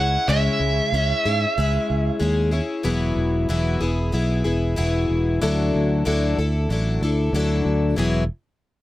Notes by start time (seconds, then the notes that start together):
Already playing: C#2 E4 G#4 F#5
0.00 C#4
0.28 C#2 C#3 G#3 C#4 E4 G#4 E5
0.60 C#2
0.92 C#2 G#3 C#4 E4 G#4
1.25 G#2 C#4 E4 G#4
1.58 C#2 G#3 C#4 E4 G#4
1.90 C#2
2.20 D#2 G#3 C#4 E4 G#4
2.52 C#4 E4 G#4
2.83 E1 E3 F#3 B3 E4 G#4
3.16 E1
3.49 E1 E3 F#3 B3 E4 G#4
3.81 E1 B3 E4 G#4
4.12 B1 F#3 B3 E4 G#4
4.44 E1 B3 E4 G#4
4.76 E1 E3 F#3 B3 E4 G#4
5.09 E1
5.41 D2 D3 F#3 D4 E4 A4
5.75 D2
6.05 D2 D3 F#3 D4 E4 A4
6.38 D2 D4 E4 A4
6.69 A1 F#3 D4 E4 A4
7.01 D2 D4 E4 A4
7.33 D2 D3 F#3 D4 E4 A4
7.65 D2
7.96 E1 E3 F#3 B3 E4 G#4